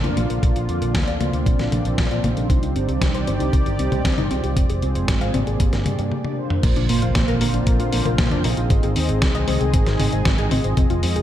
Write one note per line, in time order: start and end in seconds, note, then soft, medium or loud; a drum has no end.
0.00 0.15 F2 medium
0.00 2.46 D3 medium
0.00 2.46 F3 medium
0.00 0.41 A#3 medium
0.00 2.46 F4 medium
0.04 0.15 A#3 medium
0.04 0.15 D4 medium
0.04 0.16 F4 loud
0.04 0.15 F4 medium
0.04 0.15 D5 medium
0.04 closed hi-hat soft
0.04 high tom medium
0.17 0.28 A#1 medium
0.17 0.22 A#3 loud
0.17 0.66 A#3 medium
0.17 0.66 D4 medium
0.17 0.66 F4 medium
0.17 0.66 D5 medium
0.17 closed hi-hat medium
0.30 0.41 A#1 medium
0.30 0.42 A#4 medium
0.30 closed hi-hat soft
0.43 0.54 A#1 loud
0.43 0.48 A#3 medium
0.43 4.53 C4 medium
0.43 kick loud
0.43 closed hi-hat medium
0.56 0.66 A#1 medium
0.56 0.68 F4 medium
0.56 closed hi-hat soft
0.69 0.79 F2 medium
0.69 0.77 A#3 medium
0.69 1.17 A#3 medium
0.69 1.17 D4 medium
0.69 1.17 F4 medium
0.69 1.17 D5 medium
0.69 closed hi-hat soft
0.81 0.92 A#1 medium
0.81 0.87 A#4 medium
0.81 closed hi-hat soft
0.95 1.05 D2 medium
0.95 1.03 A#3 medium
0.95 kick loud
0.95 snare loud
0.95 closed hi-hat medium
1.07 1.18 D2 medium
1.07 1.16 D5 loud
1.07 closed hi-hat soft
1.20 1.31 D2 medium
1.20 1.25 A#3 loud
1.20 1.69 A#3 medium
1.20 1.69 D4 medium
1.20 1.69 F4 medium
1.20 1.69 D5 medium
1.20 closed hi-hat medium
1.20 high tom medium
1.33 1.44 D2 medium
1.33 1.45 F4 medium
1.33 closed hi-hat soft
1.46 1.57 A#1 medium
1.46 1.51 A#3 medium
1.46 kick loud
1.46 closed hi-hat medium
1.59 1.70 A#1 medium
1.59 1.71 A#4 medium
1.59 snare soft
1.59 closed hi-hat soft
1.72 1.83 A#1 medium
1.72 2.08 A#3 medium
1.72 1.80 A#3 medium
1.72 2.08 D4 medium
1.72 2.08 F4 medium
1.72 2.08 D5 medium
1.72 closed hi-hat medium
1.72 high tom medium
1.85 1.96 A#1 medium
1.85 1.90 D5 medium
1.85 closed hi-hat soft
1.98 2.09 A#1 loud
1.98 2.06 A#3 medium
1.98 kick loud
1.98 snare loud
1.98 closed hi-hat medium
2.11 2.22 A#1 medium
2.11 2.22 A#3 medium
2.11 2.22 D4 medium
2.11 2.22 F4 medium
2.11 2.23 F4 loud
2.11 2.22 D5 medium
2.11 closed hi-hat soft
2.24 2.34 A#1 medium
2.24 2.73 G3 medium
2.24 2.29 A#3 loud
2.24 2.73 D4 medium
2.24 2.73 D#4 medium
2.24 2.73 C5 medium
2.24 closed hi-hat medium
2.24 high tom medium
2.37 2.47 A#1 medium
2.37 2.49 A#4 medium
2.37 closed hi-hat soft
2.50 2.60 C2 loud
2.50 4.54 D#3 medium
2.50 2.55 C4 medium
2.50 4.54 G4 medium
2.50 4.54 D5 medium
2.50 kick loud
2.50 closed hi-hat medium
2.62 2.73 C2 medium
2.62 2.75 D#4 medium
2.62 closed hi-hat soft
2.75 2.86 G1 medium
2.75 3.24 G3 medium
2.75 2.84 C4 medium
2.75 3.24 D4 medium
2.75 3.24 D#4 medium
2.75 3.24 C5 medium
2.75 closed hi-hat soft
2.88 2.99 C2 medium
2.88 2.93 G4 medium
2.88 closed hi-hat soft
3.01 3.12 C2 loud
3.01 3.10 C4 medium
3.01 kick loud
3.01 snare loud
3.01 closed hi-hat medium
3.14 3.25 C2 medium
3.14 3.23 C5 loud
3.14 closed hi-hat soft
3.27 3.38 G1 medium
3.27 3.76 G3 medium
3.27 3.32 C4 loud
3.27 3.76 D4 medium
3.27 3.76 D#4 medium
3.27 3.76 C5 medium
3.27 closed hi-hat medium
3.40 3.51 C2 medium
3.40 3.52 D#4 medium
3.40 closed hi-hat soft
3.53 3.64 C2 medium
3.53 3.58 C4 medium
3.53 kick loud
3.53 closed hi-hat medium
3.66 3.77 G1 medium
3.66 3.78 G4 medium
3.66 closed hi-hat soft
3.79 3.90 C2 medium
3.79 4.15 G3 medium
3.79 3.87 C4 medium
3.79 4.15 D4 medium
3.79 4.15 D#4 medium
3.79 4.15 C5 medium
3.79 closed hi-hat medium
3.92 4.03 C2 medium
3.92 3.97 C5 medium
3.92 closed hi-hat soft
3.92 high tom medium
4.05 4.16 C2 loud
4.05 4.13 C4 medium
4.05 kick loud
4.05 snare loud
4.05 closed hi-hat medium
4.18 4.29 G1 medium
4.18 4.29 G3 medium
4.18 4.29 D4 medium
4.18 4.29 D#4 medium
4.18 4.30 D#4 loud
4.18 4.29 C5 medium
4.18 closed hi-hat soft
4.18 high tom medium
4.31 4.41 C2 medium
4.31 4.79 G#3 medium
4.31 4.79 C4 medium
4.31 4.36 C4 loud
4.31 4.79 F4 medium
4.31 4.79 C5 medium
4.31 closed hi-hat medium
4.44 4.54 C2 medium
4.44 4.56 G4 medium
4.44 closed hi-hat soft
4.56 4.67 F1 loud
4.56 5.59 F3 medium
4.56 5.59 G#3 medium
4.56 5.59 C4 medium
4.56 4.61 C4 medium
4.56 5.59 G#4 medium
4.56 kick loud
4.56 closed hi-hat medium
4.69 4.80 F1 medium
4.69 4.82 G#4 medium
4.69 closed hi-hat soft
4.82 4.93 C2 medium
4.82 5.31 G#3 medium
4.82 5.31 C4 medium
4.82 4.91 C4 medium
4.82 5.31 F4 medium
4.82 5.31 C5 medium
4.82 closed hi-hat soft
4.95 5.06 F1 medium
4.95 5.00 C5 medium
4.95 closed hi-hat soft
5.08 5.19 G#1 loud
5.08 5.16 C4 medium
5.08 kick loud
5.08 snare loud
5.08 closed hi-hat medium
5.21 5.32 G#1 medium
5.21 5.29 F5 loud
5.21 closed hi-hat soft
5.34 5.45 G#1 medium
5.34 5.83 A#3 medium
5.34 5.39 C4 loud
5.34 5.83 D4 medium
5.34 5.83 G4 medium
5.34 5.83 D5 medium
5.34 closed hi-hat medium
5.34 high tom medium
5.47 5.58 G#1 medium
5.47 5.59 G#4 medium
5.47 closed hi-hat soft
5.60 5.71 G1 loud
5.60 5.65 A#3 medium
5.60 kick loud
5.60 closed hi-hat loud
5.73 5.84 G1 medium
5.73 5.85 A#4 medium
5.73 snare soft
5.73 closed hi-hat soft
5.86 5.97 G2 medium
5.86 6.22 A#3 medium
5.86 5.94 A#3 medium
5.86 6.22 D4 medium
5.86 6.22 G4 medium
5.86 6.22 D5 medium
5.86 closed hi-hat medium
5.86 high tom medium
5.99 6.09 G2 medium
5.99 6.04 D5 medium
5.99 closed hi-hat soft
6.12 high tom medium
6.25 6.36 A#3 medium
6.25 6.36 D4 medium
6.25 6.36 G4 medium
6.25 6.36 D5 medium
6.25 high tom medium
6.37 6.86 A#3 medium
6.37 6.86 D4 medium
6.37 6.86 F4 medium
6.37 6.86 C5 medium
6.50 mid tom medium
6.63 6.74 A#1 loud
6.63 8.68 D3 medium
6.63 8.68 A#3 medium
6.63 6.68 A#3 medium
6.63 10.73 C4 medium
6.63 8.68 F4 medium
6.63 kick loud
6.63 closed hi-hat medium
6.63 crash loud
6.63 impact medium
6.76 6.87 A#1 medium
6.76 6.89 D4 medium
6.76 closed hi-hat soft
6.89 7.00 A#2 loud
6.89 7.38 A#3 medium
6.89 6.97 A#3 medium
6.89 7.38 D4 medium
6.89 7.38 F4 medium
6.89 7.38 C5 medium
6.89 open hi-hat loud
7.02 7.13 A#1 medium
7.02 7.07 F4 medium
7.02 closed hi-hat soft
7.15 7.26 A#1 loud
7.15 7.23 A#3 medium
7.15 kick loud
7.15 snare loud
7.15 closed hi-hat loud
7.28 7.39 A#1 medium
7.28 7.36 A#4 loud
7.28 closed hi-hat soft
7.41 7.52 A#2 medium
7.41 7.90 A#3 medium
7.41 7.46 A#3 loud
7.41 7.90 D4 medium
7.41 7.90 F4 medium
7.41 7.90 C5 medium
7.41 open hi-hat loud
7.54 7.65 A#1 medium
7.54 7.66 D4 medium
7.54 closed hi-hat soft
7.67 7.78 A#1 loud
7.67 7.72 A#3 medium
7.67 kick loud
7.67 closed hi-hat loud
7.80 7.91 A#2 medium
7.80 7.92 F4 medium
7.80 closed hi-hat soft
7.93 8.03 A#1 loud
7.93 8.28 A#3 medium
7.93 8.01 A#3 medium
7.93 8.28 D4 medium
7.93 8.28 F4 medium
7.93 8.28 C5 medium
7.93 open hi-hat loud
8.06 8.16 A#1 medium
8.06 8.11 A#4 medium
8.06 closed hi-hat soft
8.06 high tom medium
8.18 8.29 A#1 loud
8.18 8.27 A#3 medium
8.18 kick loud
8.18 snare loud
8.18 closed hi-hat loud
8.31 8.42 F2 medium
8.31 8.43 A#3 medium
8.31 8.43 D4 medium
8.31 8.44 D4 loud
8.31 8.43 F4 medium
8.31 8.42 C5 medium
8.31 closed hi-hat soft
8.31 high tom medium
8.44 8.55 A#1 medium
8.44 8.49 A#3 loud
8.44 8.93 C4 medium
8.44 8.93 D#4 medium
8.44 8.93 G#4 medium
8.44 8.93 D#5 medium
8.44 open hi-hat loud
8.57 8.68 A#1 medium
8.57 8.70 F4 medium
8.57 closed hi-hat soft
8.70 8.81 G#1 loud
8.70 10.75 D#3 medium
8.70 10.75 G#3 medium
8.70 8.75 C4 medium
8.70 10.75 G#4 medium
8.70 kick loud
8.70 closed hi-hat loud
8.83 8.94 G#1 medium
8.83 8.95 G#4 medium
8.83 closed hi-hat soft
8.96 9.07 D#2 loud
8.96 9.04 C4 medium
8.96 9.45 C4 medium
8.96 9.45 D#4 medium
8.96 9.45 G#4 medium
8.96 9.45 D#5 medium
8.96 open hi-hat loud
9.09 9.20 G#1 medium
9.09 9.14 C5 medium
9.09 closed hi-hat soft
9.22 9.33 C2 loud
9.22 9.30 C4 medium
9.22 kick loud
9.22 snare loud
9.22 closed hi-hat loud
9.35 9.46 C2 medium
9.35 9.43 D#5 loud
9.35 closed hi-hat soft
9.48 9.59 C2 medium
9.48 9.97 C4 medium
9.48 9.53 C4 loud
9.48 9.97 D#4 medium
9.48 9.97 G#4 medium
9.48 9.97 D#5 medium
9.48 open hi-hat loud
9.48 high tom medium
9.61 9.72 C2 medium
9.61 9.73 G#4 medium
9.61 closed hi-hat soft
9.74 9.84 G#1 loud
9.74 9.79 C4 medium
9.74 kick loud
9.74 closed hi-hat loud
9.87 9.97 G#1 medium
9.87 9.99 C5 medium
9.87 snare soft
9.87 closed hi-hat soft
9.99 10.10 G#1 medium
9.99 10.35 C4 medium
9.99 10.08 C4 medium
9.99 10.35 D#4 medium
9.99 10.35 G#4 medium
9.99 10.35 D#5 medium
9.99 open hi-hat loud
9.99 high tom medium
10.13 10.23 G#1 medium
10.13 10.17 D#5 medium
10.13 closed hi-hat soft
10.25 10.36 G#1 loud
10.25 10.34 C4 medium
10.25 kick loud
10.25 snare loud
10.25 closed hi-hat medium
10.38 10.49 G#1 medium
10.38 10.49 C4 medium
10.38 10.49 D#4 medium
10.38 10.49 G#4 medium
10.38 10.51 G#4 loud
10.38 10.49 D#5 medium
10.38 closed hi-hat soft
10.51 10.62 G#1 medium
10.51 11.00 C4 medium
10.51 10.56 C4 loud
10.51 11.00 F4 medium
10.51 11.00 G#4 medium
10.51 11.00 D#5 medium
10.51 open hi-hat loud
10.51 high tom medium
10.64 10.75 G#1 medium
10.64 10.76 C5 medium
10.64 closed hi-hat soft
10.77 10.88 F1 loud
10.77 11.22 D#3 medium
10.77 11.22 G#3 medium
10.77 10.82 C4 medium
10.77 11.22 C4 medium
10.77 11.22 F4 medium
10.77 kick loud
10.77 closed hi-hat medium
10.90 11.01 F1 medium
10.90 11.02 F4 medium
10.90 closed hi-hat soft
11.03 11.14 F2 loud
11.03 11.11 C4 medium
11.03 11.22 C4 medium
11.03 11.22 F4 medium
11.03 11.22 G#4 medium
11.03 11.22 D#5 medium
11.03 open hi-hat loud
11.16 11.22 F1 medium
11.16 11.21 G#4 medium
11.16 closed hi-hat soft